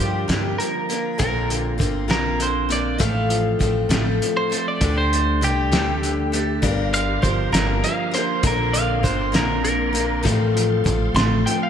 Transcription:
Already playing: G2 D3 F3 G4
0.00 G2 G3 D4 F4 A#4
0.28 G2 G3 A#3 D4 F4 A#4, snare, closed hi-hat
0.59 F3 A#4, closed hi-hat
0.89 A#3 D4 F4 A#4, closed hi-hat
1.18 A#1 A#2 D3 A#3 C4 F4 A#4, kick, closed hi-hat
1.49 D3, closed hi-hat
1.78 G1 D3 A#3 C4 F4 A#4, kick, closed hi-hat
2.08 A#1 A#2 D3 A#3 C4 F4 A#4, snare, closed hi-hat
2.39 D3 C5, closed hi-hat
2.69 A#3 C4 F4 A#4 D5, closed hi-hat
2.98 A1 A2 F3 A3 C4 F4 A4 F5, kick, closed hi-hat
3.29 F3, closed hi-hat
3.59 A1 F3 A3 C4 F4 A4, kick, closed hi-hat
3.89 A1 A2 F3 A3 C4 F4 A4, snare, closed hi-hat
4.22 F3, closed hi-hat
4.37 C5
4.50 A3 C4 F4 A4, closed hi-hat
4.68 D5
4.81 D2 D3 G3 D4 G4 A4, kick, closed hi-hat
4.98 C5
5.12 A3, closed hi-hat
5.41 C2 D3 G3 D4 G4 A4, closed hi-hat
5.71 D2 D3 G3 A3 D4 G4 A4, snare, closed hi-hat
6.03 D3, closed hi-hat
6.32 A3 D4 G4 A4, closed hi-hat
6.62 G1 G2 G3 D4 F4 G4 A#4 F5 A#5, kick, closed hi-hat
6.93 D3 F5, closed hi-hat
7.22 G1 F3 G3 D4 F4 A#4 C5, kick, closed hi-hat
7.52 G1 G3 A#3 D4 F4 A#4, snare, closed hi-hat
7.82 F3 F5, closed hi-hat
8.11 A#3 D4 F4 A#4 C5, closed hi-hat
8.41 A#1 A#2 D3 A#3 C4 F4 A#4 D5 C6, kick, closed hi-hat
8.47 A#4
8.73 D3 F5, closed hi-hat
9.03 G1 D3 A#3 C4 F4 A#4 C5, kick, closed hi-hat
9.32 A#1 A#2 D3 A#3 C4 F4 A#4, snare, closed hi-hat
9.64 D3 A#4, closed hi-hat
9.93 A#3 C4 F4 A#4, closed hi-hat
10.23 A1 A2 F3 A3 C4 F4 A4 F5, kick, closed hi-hat
10.54 F3, closed hi-hat
10.84 A1 F3 A3 C4 F4 A4, kick, closed hi-hat
11.14 A1 A2 F3 A3 C4 F4 A4 C6, snare, closed hi-hat
11.45 F3 G5, closed hi-hat
11.63 F5

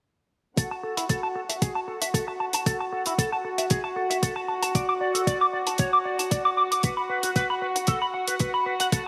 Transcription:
0.57 F#4 A4 F#5, kick, closed hi-hat
0.71 A5
0.83 A4
0.97 E4, closed hi-hat
1.09 A4, kick, closed hi-hat
1.23 A5
1.35 A4
1.49 E5, closed hi-hat
1.62 G#4, kick, closed hi-hat
1.75 A5
1.88 A4
2.02 E5, closed hi-hat
2.14 A4, kick, closed hi-hat
2.28 A5
2.40 A5
2.53 A5, closed hi-hat
2.66 A4, kick, closed hi-hat
2.80 A5
2.93 A4
3.06 E4, closed hi-hat
3.18 A4, kick, closed hi-hat
3.32 A5
3.45 A4
3.58 E5, closed hi-hat
3.70 G#4, kick, closed hi-hat
3.84 A5
3.96 A4
4.10 E5, closed hi-hat
4.23 A4, kick, closed hi-hat
4.36 A5
4.48 A5
4.62 A5, closed hi-hat
4.75 D5, kick, closed hi-hat
4.89 D6
5.01 D5
5.15 A4, closed hi-hat
5.27 D5, kick, closed hi-hat
5.41 D6
5.53 D5
5.67 A5, closed hi-hat
5.78 C#5, kick, closed hi-hat
5.93 D6
6.05 D5
6.19 A5, closed hi-hat
6.31 D5, kick, closed hi-hat
6.45 D6
6.57 D6
6.71 D6, closed hi-hat
6.83 B4, kick, closed hi-hat
6.97 B5
7.10 B4
7.23 F#4, closed hi-hat
7.36 B4, kick, closed hi-hat
7.50 B5
7.62 B4
7.75 F#5, closed hi-hat
7.87 A4, kick, closed hi-hat
8.02 B5
8.14 F#5
8.28 B4, closed hi-hat
8.39 B4, kick, closed hi-hat
8.54 B5
8.66 B4
8.80 F#5, closed hi-hat
8.92 F#4 A4 F#5, kick, closed hi-hat

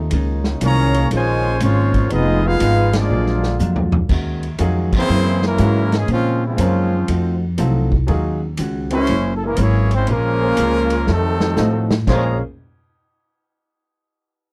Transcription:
Already playing: D#4
0.10 C#2 A#2 D#3 G#3 A#3 C#4, ride
0.44 snare
0.61 C2 A#2 D#3 F3 G#3 A#3 C#4 C#5, hi-hat pedal, ride
0.65 G#4 F5 A#5
0.94 ride
1.10 A#1 A#2 C#3 D#3 F3 G#3 C#4, ride
1.15 F4 C5 C#5 G#5
1.59 G#1 A#2 D#3 F3 G#3 C#4, hi-hat pedal, ride
1.64 G#3 F4 C5 C#5
1.94 kick, ride
2.09 F1 D#3 F3 G#3 B3 D#4 F4, ride
2.13 B3 F4 G#4 D#5
2.44 G#3 B3 D#4 F4 G#4 B4 F5
2.60 G#1 F3 B3 D#4 G#4, hi-hat pedal, ride
2.93 F3 G#3 D4, snare, ride
2.97 A#3 F4 G#4 D5
3.10 A#1 A#2 D3 F#3 G#3 A#3 D4 F4
3.26 snare
3.43 snare
3.59 F2 A#2 F#3 G#3 D4, hi-hat pedal
3.76 floor tom
3.92 floor tom
4.09 D#2 D#3 G#3 C#4 F#4, kick, crash
4.43 ride
4.58 F2 D#3 F#3 G#3 C#4 D#4 F4 F#4 G#4, hi-hat pedal, ride
4.93 C#3 C4, kick, crash
4.97 E3 A#3 E4 G#4 C5
5.09 F#2 F#3 A#3 E4 G#4
5.25 snare
5.42 C#3 E3 A#3, snare
5.47 G#3 C#4 E4 A#4
5.58 G#2 F#3 G#3 A#3 C#4 E4 F#4 G#4 A#4, hi-hat pedal, ride
5.92 C#3 E3 G#3, snare, ride
5.97 A#3 C#4 G#4
6.08 G#2 A#2 C#3 F3 G#3 A#3 C4 C#4 F4 G#4 C5, ride
6.12 C#4
6.44 G#2 C#3 F3 G#3 C4 C#4 F4
6.57 F#2 G#3 A#3 C4 C#4 F4 G#4 A#4 C5, hi-hat pedal, ride
7.07 F2 F3 A3 D#4 F#4, ride
7.58 C2 F3 F#3 A3 C4 D#4 F4 F#4 A4, hi-hat pedal, ride
7.92 kick
8.07 D#2 D#3 F#3 G#3 C#4 D#4 F4 G#4, ride
8.11 F#4
8.57 C#2 D#3 G#3 C#4 F#4, hi-hat pedal, ride
8.90 G#3 C#4 E4 F#4 A#4 C5, ride
9.07 F#1 F#3 A#3, ride
9.11 E4 G#4
9.36 A4
9.44 C#3 E3 G#3 A#3 C#4 E4 A#4
9.56 G#1 F#3 A#3 E4, hi-hat pedal, ride
9.61 E3 A#3 C#4 E4 G#4 C#5
9.91 C4, ride
9.95 G#3 C#4 E4 C5
10.07 A#1 C#3 F3 A#3 C#4 G#4, ride
10.11 G#3 C#4 F4 A#4 C5
10.41 A#3 C#4 F4 G#4 C5
10.57 C#2 A#3 C#4 G#4 C5, hi-hat pedal, ride
10.90 ride
11.07 F2 C3 D#3 F3 A3 D#4 F#4, snare
11.12 F#3 C4 D#4 A4
11.40 snare
11.56 A2 F3 A3 D#4 F4 F#4 C5, snare, hi-hat pedal
11.91 snare
12.07 A#1 A#2 F3 G#3 A#3 C#4 F4 G#4 C5 C#5 F5 A#5, kick, snare, crash

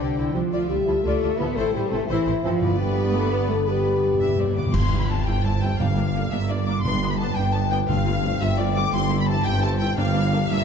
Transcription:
Already playing: C3 D3 G3 D4 C5 G5
0.00 G4 D5
0.15 C2 E4 D5
0.33 C2 D3 F3 G3 C4 D4 F4 C5
0.38 F3
0.42 E4
0.47 A4 D5 E5
0.52 D2 F4
0.68 D2 G3 F4 G4 D5
0.85 D2 F3 E4 F4 A4
1.03 D2 A3 F4 A4 D5
1.22 D2 F4 D5
1.37 D2 A2 F3 B3 E4 F4 B4
1.41 A3 A4
1.48 C4
1.53 A3 A4 C5
1.57 A1 E4 C5
1.73 A1 G3 E4 G4 C5
1.90 A1 E3 A3 C4 E4 A4
2.07 A1 E3 E4 C5
2.26 A1 E4 C5
2.44 A1 G2 E3 F3 C4 E4 F4 A4
2.48 B3
2.52 D4
2.57 D5
2.61 G1 G2 D3 B3 B4
2.78 G3 G4
3.13 A3 A4
3.31 B3 B4
3.48 G2 A3 A4
3.54 B3
3.58 D4
3.62 B4 D5
3.67 G2 D3 G3 B3 G4 D5
3.75 G2
3.98 G2
4.06 G2
4.14 G2
4.20 G2 D4 E5
4.29 G2
4.36 G2 C4 D5
4.43 G2
4.51 G2
4.56 G2 B3 D6
4.66 G2
4.72 G1 G2 G3 E4 C6, concert bass drum, crash
4.83 G3
4.91 G3 C4 E4
5.00 E4 B5
5.08 E3 G3 C4 E4 C5 A5
5.18 E4
5.26 G1 G2 G3 E4 E5 G5
5.36 C6
5.44 G3 E4 E5 A5
5.54 C5
5.61 E3 G3 C4 E4 G5
5.72 C4
5.79 G1 G2 A#3 D4 F5
5.89 D3
5.96 A#3 D4
6.07 F4
6.14 D3 A#3 D4 A#4
6.24 D5
6.31 G1 G2 A#3 D4 E5 F5
6.41 A#5
6.49 A#3 D4 D5 F5
6.59 A#4
6.66 D3 A#3 D4 F4 D6
6.76 D4
6.82 G1 G2 B3 D4 C6
6.93 D3
7.02 B3 D4
7.10 G4 B5
7.18 D3 B3 D4 B4 A5
7.28 D5
7.35 G1 G2 B3 D4 G5
7.45 B5
7.53 B3 D4 A5
7.64 B4
7.70 D3 B3 D4 G4 G5
7.81 D4
7.88 G1 G2 A3 F4 F5
7.99 G3
8.06 A3 C4 F4
8.16 G4
8.23 F3 A3 C4 F4 A4
8.33 C5
8.40 G1 G2 A3 F4 E5 G5
8.49 A5
8.58 A3 F4 D5 G5
8.66 A4
8.74 F3 A3 C4 F4 G4 D6
8.83 C4
8.92 G1 G2 G3 E4 C6
9.01 G3
9.09 G3 C4 E4
9.18 E4 B5
9.26 E3 G3 C4 E4 C5 A5
9.35 E4
9.44 G1 G2 G3 E4 E5 G5
9.53 C6
9.62 G3 E4 E5 A5
9.71 C5
9.79 E3 G3 C4 E4 G5
9.88 C4
9.96 G1 G2 A#3 D4 F5
10.05 D3
10.13 A#3 D4
10.23 F4
10.32 D3 A#3 D4 A#4
10.41 D5
10.50 G1 G2 A#3 D4 E5
10.58 A#5

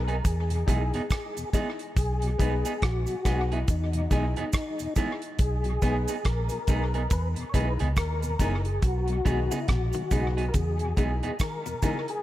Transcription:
Already playing: B1 A#4
0.08 B3 D#4 G#4, closed hi-hat
0.25 E2 G#4, kick, closed hi-hat, cabasa
0.50 E2 B2, closed hi-hat
0.67 B1 E3 G#3 B3 D#4 E4 G#4, kick, closed hi-hat, cabasa
0.94 E2 B2 B3 D#4 G#4, closed hi-hat
1.10 kick, cross-stick, closed hi-hat, cabasa
1.37 E2 B2, closed hi-hat, cabasa
1.53 E3 G#3 B3 D#4 E4 G#4, kick, closed hi-hat, cabasa
1.79 closed hi-hat
1.97 B1 G#4, kick, closed hi-hat, cabasa
2.22 B2 F#3, closed hi-hat
2.38 B1 G#3 B3 D#4 G#4, kick, closed hi-hat, cabasa
2.65 B3 D#4 G#4, closed hi-hat, cabasa
2.82 A#1 F#4, kick, cross-stick, closed hi-hat
3.07 B2 F#3, closed hi-hat, cabasa
3.24 B1 G#3 B3 D#4 G#4, kick, cross-stick, closed hi-hat, cabasa
3.52 B3 D#4 E4 G#4, closed hi-hat
3.68 E2 D#4, kick, closed hi-hat, cabasa
3.93 E2 B2, closed hi-hat
4.10 B1 E3 G#3 B3 D#4 E4 G#4, kick, closed hi-hat, cabasa
4.36 E2 B2 B3 D#4 G#4, closed hi-hat
4.53 kick, cross-stick, closed hi-hat, cabasa
4.79 E2 B2, closed hi-hat, cabasa
4.96 E3 G#3 B3 D#4 E4 G#4, kick, closed hi-hat, cabasa
5.22 closed hi-hat
5.39 B1 G#4, kick, closed hi-hat, cabasa
5.64 B2 F#3, closed hi-hat
5.82 B1 G#3 B3 D#4 G#4, kick, closed hi-hat, cabasa
6.08 B3 D#4 G#4, closed hi-hat, cabasa
6.25 A#1 A#4, kick, cross-stick, closed hi-hat
6.49 B2 F#3, closed hi-hat, cabasa
6.67 B1 G#3 B3 D#4 G#4, kick, closed hi-hat, cabasa
6.94 B3 D#4 G#4, closed hi-hat
7.10 E2 B4, kick, closed hi-hat, cabasa
7.36 E2 B2, closed hi-hat
7.49 C#5
7.54 B1 E3 G#3 B3 D#4 E4 G#4 B4, kick, closed hi-hat, cabasa
7.79 C#2 E2 B2 B3 D#4 G#4, closed hi-hat
7.96 D#2 A#4, kick, cross-stick, closed hi-hat, cabasa
8.22 E2 B2, closed hi-hat, cabasa
8.39 F#1 E3 G#3 B3 D#4 E4 G#4, kick, closed hi-hat, cabasa
8.65 G#4, closed hi-hat
8.82 B1 F#4, kick, closed hi-hat, cabasa
9.08 B2 F#3, closed hi-hat
9.25 B1 D#3 G#3 B3 D#4 G#4, kick, closed hi-hat, cabasa
9.51 C#3 B3 D#4 E4 G#4, closed hi-hat, cabasa
9.68 A#1 B2 F#4, kick, cross-stick, closed hi-hat
9.93 B2 D#3 F#3, closed hi-hat, cabasa
10.11 B1 C#3 G#3 B3 D#4 G#4, kick, closed hi-hat, cabasa
10.37 B3 D#4 G#4, closed hi-hat
10.49 A#4
10.54 E2 C#3 G#4, kick, closed hi-hat, cabasa
10.79 E2 B2, closed hi-hat
10.97 B1 B2 E3 G#3 B3 D#4 E4 G#4, kick, closed hi-hat, cabasa
11.23 E2 B2 B3 D#4 G#4, closed hi-hat
11.39 D#3 A#4, kick, cross-stick, closed hi-hat, cabasa
11.66 E2 B2, closed hi-hat, cabasa
11.82 C#3 E3 G#3 B3 D#4 E4 G#4, kick, closed hi-hat, cabasa
12.08 G#4, closed hi-hat

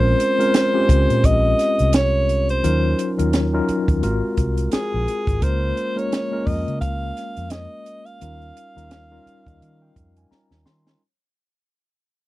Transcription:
Already playing: A#1 G#3 C4 C#4 F4 A#4 C5
0.20 closed hi-hat
0.38 G#3 C4 C#4 F4 A#4, closed hi-hat
0.54 snare, closed hi-hat
0.74 G#3 C4 C#4 F4 G4
0.89 C#2, kick, closed hi-hat
1.10 A#2, closed hi-hat
1.24 A#1 D#5, kick, closed hi-hat
1.59 snare, closed hi-hat
1.79 C2, closed hi-hat
1.93 C#5, snare, closed hi-hat
2.29 closed hi-hat
2.49 C5, closed hi-hat
2.63 D#2 F#3 C#4 D#4 F4 A#4, closed hi-hat
2.99 closed hi-hat
3.18 D#2 F#3 C#4 D#4 F4 A#4, closed hi-hat
3.33 snare, closed hi-hat
3.53 F#3 C#4 D#4 F4 A#4
3.69 muted fingered electric bass stroke, closed hi-hat
3.88 D#2, kick, closed hi-hat
4.02 G#1 G#3 C4 F4 F#4 A#4, closed hi-hat
4.23 muted fingered electric bass stroke
4.37 C2, kick, closed hi-hat
4.57 closed hi-hat
4.72 G#4, muted fingered electric bass stroke, snare, closed hi-hat
4.94 A#1
5.08 closed hi-hat
5.27 G#1, kick, closed hi-hat
5.42 C#2 G#3 A#3 C#4 F4 A#4 C5, kick, closed hi-hat
5.77 closed hi-hat
5.96 G#3 A#3 C#4 F4 A#4 C#5, closed hi-hat
6.12 snare, closed hi-hat
6.31 G#3 A#3 C#4 F4 A#4
6.46 F2 D#5, kick, open hi-hat
6.68 C#3, closed hi-hat
6.81 C#2 F5, kick, closed hi-hat
7.17 snare, closed hi-hat
7.37 F2, closed hi-hat
7.50 D#5, snare, closed hi-hat
7.86 closed hi-hat
8.06 F5, closed hi-hat
8.21 D#2 G3 C#4 D#4 F4 A#4, closed hi-hat
8.42 closed hi-hat
8.57 closed hi-hat
8.76 D#2 G3 C#4 D#4 F4 A#4, closed hi-hat
8.91 snare, closed hi-hat
9.11 G3 C#4 D#4 F4 A#4
9.26 F5, muted fingered electric bass stroke, closed hi-hat
9.47 D#2 D#5, kick, closed hi-hat
9.61 D#3 F5, closed hi-hat
9.82 G5
9.96 F2, kick, closed hi-hat
10.16 G#5, closed hi-hat
10.31 A#5, muted fingered electric bass stroke, snare
10.51 D#2, snare
10.65 D#3 C6, snare
10.87 snare

